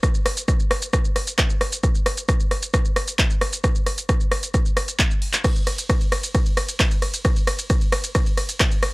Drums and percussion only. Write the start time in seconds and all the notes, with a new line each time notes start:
0.03 kick, cross-stick, closed hi-hat, shaker
0.14 shaker
0.26 cross-stick, open hi-hat
0.37 closed hi-hat, shaker
0.48 kick, cross-stick, closed hi-hat, shaker
0.60 shaker
0.71 cross-stick, open hi-hat
0.82 closed hi-hat, shaker
0.93 kick, cross-stick, closed hi-hat, shaker
1.05 shaker
1.16 cross-stick, open hi-hat
1.27 closed hi-hat, shaker
1.38 kick, cross-stick, clap, closed hi-hat, shaker
1.50 shaker
1.61 cross-stick, open hi-hat
1.72 closed hi-hat, shaker
1.83 kick, cross-stick, closed hi-hat, shaker
1.95 shaker
2.06 cross-stick, open hi-hat
2.17 closed hi-hat, shaker
2.29 kick, cross-stick, closed hi-hat, shaker
2.40 shaker
2.51 cross-stick, open hi-hat
2.63 closed hi-hat, shaker
2.74 kick, cross-stick, closed hi-hat, shaker
2.85 shaker
2.96 cross-stick, open hi-hat
3.08 closed hi-hat, shaker
3.19 kick, cross-stick, clap, closed hi-hat, shaker
3.30 shaker
3.41 cross-stick, open hi-hat
3.53 closed hi-hat, shaker
3.64 kick, cross-stick, closed hi-hat, shaker
3.75 shaker
3.86 cross-stick, open hi-hat
3.98 closed hi-hat, shaker
4.09 kick, cross-stick, closed hi-hat, shaker
4.20 shaker
4.32 cross-stick, open hi-hat
4.43 closed hi-hat, shaker
4.54 kick, cross-stick, closed hi-hat, shaker
4.66 shaker
4.77 cross-stick, open hi-hat
4.88 closed hi-hat, shaker
4.99 kick, clap, closed hi-hat, shaker
5.11 shaker
5.22 open hi-hat
5.33 clap, closed hi-hat, shaker
5.44 kick, cross-stick, closed hi-hat, ride, crash, shaker
5.56 ride, shaker
5.67 cross-stick, open hi-hat, ride
5.78 closed hi-hat, ride, shaker
5.89 kick, cross-stick, closed hi-hat, ride, shaker
6.01 ride, shaker
6.12 cross-stick, open hi-hat, ride
6.23 closed hi-hat, ride, shaker
6.35 kick, cross-stick, closed hi-hat, ride, shaker
6.46 ride, shaker
6.57 cross-stick, open hi-hat, ride
6.69 closed hi-hat, ride, shaker
6.80 kick, cross-stick, clap, closed hi-hat, ride, shaker
6.91 ride, shaker
7.02 cross-stick, open hi-hat, ride
7.14 closed hi-hat, ride, shaker
7.25 kick, cross-stick, closed hi-hat, ride, shaker
7.36 ride, shaker
7.47 cross-stick, open hi-hat, ride
7.59 closed hi-hat, ride, shaker
7.70 kick, cross-stick, closed hi-hat, ride, shaker
7.81 ride, shaker
7.92 cross-stick, open hi-hat, ride
8.04 closed hi-hat, ride, shaker
8.15 kick, cross-stick, closed hi-hat, ride, shaker
8.26 ride, shaker
8.37 cross-stick, open hi-hat, ride
8.49 closed hi-hat, ride, shaker
8.60 kick, cross-stick, clap, closed hi-hat, ride, shaker
8.71 ride, shaker
8.83 cross-stick, open hi-hat, ride